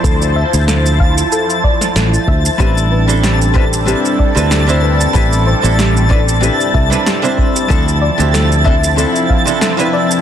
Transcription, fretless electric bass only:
X:1
M:4/4
L:1/16
Q:"Swing 16ths" 1/4=94
K:Am
V:1 name="Fretless electric bass" clef=bass
D,,2 z D,,4 z4 z A,,, z D,, z | A,,,8 z3 D,,4 z | A,,,2 z A,,,4- A,,, z2 C,, z4 z | D,,2 z D,,4- D,, z8 |]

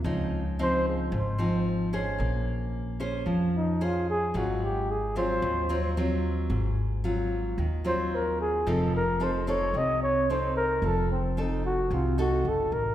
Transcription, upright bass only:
X:1
M:4/4
L:1/8
Q:1/4=111
K:Fphr
V:1 name="Upright bass" clef=bass
D,,4 A,,,4 | B,,,4 F,,4 | A,,,4 E,,4 | A,,,4 E,,4 |
F,,,4 C,,4 | F,,,4 C,,2 G,,, =A,,, |]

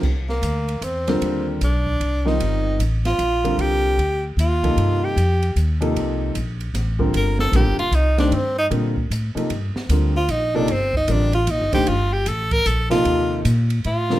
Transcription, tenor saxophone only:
X:1
M:3/4
L:1/8
Q:"Swing" 1/4=152
K:Cdor
V:1 name="Tenor saxophone"
z B,3 C2- | C z D3 E- | E2 z F3 | G3 z F2- |
F G3 z2 | z6 | B A G F E D | C E z4 |
z3 F E D | C E D F E G | F G A B A F- | F2 z2 F2 |]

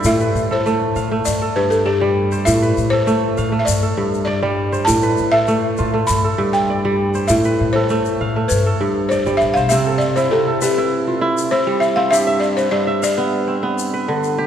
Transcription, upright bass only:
X:1
M:4/4
L:1/16
Q:1/4=99
K:C
V:1 name="Upright bass" clef=bass
A,,2 A,,4 A,,2 G,,8 | A,,2 A,,4 A,,2 G,,8 | A,,2 A,,4 A,,2 G,,8 | A,,2 A,,4 A,,2 G,,4- G,, G,,, A,,, B,,, |
z16 | z16 |]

